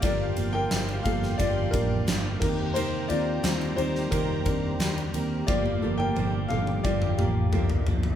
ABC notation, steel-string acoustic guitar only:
X:1
M:4/4
L:1/8
Q:1/4=88
K:Gm
V:1 name="Steel-string acoustic guitar"
[G,,F,G,B,DG] [F,B,DG] [F,B,DG] [F,B,DG] [G,,F,G,B,DG] [F,B,DG] [F,B,DG] [B,CGB] | [C,E,B,CGB] [B,CGB] [B,CGB] [B,CGB] [C,E,B,CGB] [B,CGB] [B,CGB] [B,CGB] | [G,,F,G,B,DG] [F,B,DG] [F,B,DG] [F,B,DG] [G,,F,G,B,DG] [F,B,DG] [F,B,DG] [F,B,DG] |]